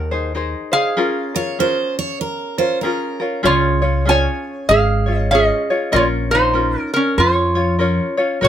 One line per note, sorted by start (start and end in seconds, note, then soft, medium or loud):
0.00 0.53 D#2 loud
0.00 0.11 D#4 medium
0.00 0.12 G#4 medium
0.00 0.11 A#4 medium
0.00 0.31 A#4 medium
0.00 0.10 C5 medium
0.00 0.32 F#5 medium
0.11 0.34 D#4 soft
0.11 0.34 G#4 soft
0.11 0.35 C5 medium
0.35 0.73 D#4 medium
0.35 0.72 G#4 medium
0.35 0.73 A#4 medium
0.35 0.70 C5 medium
0.72 0.96 D#4 soft
0.72 0.95 G#4 soft
0.72 2.79 G#4 medium
0.72 0.96 C5 medium
0.72 2.79 F5 loud
0.97 1.35 C#4 medium
0.97 1.34 F4 medium
0.97 1.35 G#4 medium
0.97 1.33 A#4 medium
1.35 1.58 C#4 soft
1.35 1.59 F4 soft
1.35 1.59 A#4 medium
1.35 1.60 C#5 loud
1.59 2.60 C#4 medium
1.59 2.59 F4 medium
1.59 2.61 G#4 medium
1.59 2.57 A#4 medium
1.59 1.95 C5 medium
1.99 2.20 C#5 medium
2.21 2.56 A#4 medium
2.58 2.83 C#4 soft
2.58 2.83 F4 medium
2.58 2.82 A#4 medium
2.58 2.81 C5 medium
2.81 3.20 C#4 medium
2.81 3.20 F4 medium
2.81 3.21 G#4 medium
2.81 3.40 A#4 medium
2.81 3.19 A#4 medium
3.20 3.42 C#4 medium
3.20 3.42 F4 medium
3.20 3.44 A#4 medium
3.43 4.25 C#2 medium
3.43 3.82 C#4 medium
3.43 3.81 F4 medium
3.43 4.04 F4 medium
3.43 3.82 G#4 medium
3.43 3.81 C#5 medium
3.43 4.09 C#5 loud
3.82 4.05 C#4 soft
3.82 4.06 F4 soft
3.82 4.06 C#5 medium
4.05 5.08 C#4 medium
4.05 5.07 F4 medium
4.05 5.06 G#4 medium
4.05 5.06 C#5 medium
4.05 4.72 G#5 loud
4.11 4.67 C#5 medium
4.69 5.50 G#1 loud
4.69 5.28 G#4 medium
4.69 5.18 F5 loud
5.06 5.30 C#4 soft
5.06 5.31 F4 soft
5.06 5.30 C#5 medium
5.18 5.31 D#5 loud
5.31 5.70 C#4 medium
5.31 5.69 F4 medium
5.31 5.69 G#4 medium
5.31 5.69 C#5 medium
5.31 5.95 D#5 medium
5.35 5.91 G#4 medium
5.70 5.91 C#4 soft
5.70 5.92 F4 medium
5.70 5.92 C#5 medium
5.92 6.74 A#1 loud
5.92 6.31 C#4 medium
5.92 6.31 F4 medium
5.92 6.31 A#4 medium
5.92 6.03 C#5 medium
5.92 6.32 C#5 medium
5.96 6.06 F4 medium
6.31 6.54 C#4 soft
6.31 6.91 D#4 medium
6.31 6.54 F4 medium
6.31 6.80 C5 medium
6.54 7.57 C#4 medium
6.54 7.56 F4 medium
6.54 7.79 A#4 medium
6.80 6.93 A#4 medium
6.94 7.17 C#4 medium
6.94 7.16 A#4 medium
7.18 7.98 F2 loud
7.18 8.15 F4 medium
7.18 8.14 C#5 medium
7.55 7.78 C#4 soft
7.55 7.79 F4 soft
7.55 7.78 C#5 medium
7.79 8.18 C#4 medium
7.79 8.17 F4 medium
7.79 8.17 A#4 medium
7.79 8.16 C#5 medium
8.17 8.42 C#4 soft
8.17 8.41 F4 medium
8.17 8.41 C#5 medium
8.41 8.48 A#1 loud
8.41 8.48 F#4 medium
8.41 8.48 A#4 medium
8.41 8.48 C#5 medium
8.41 8.48 D#5 medium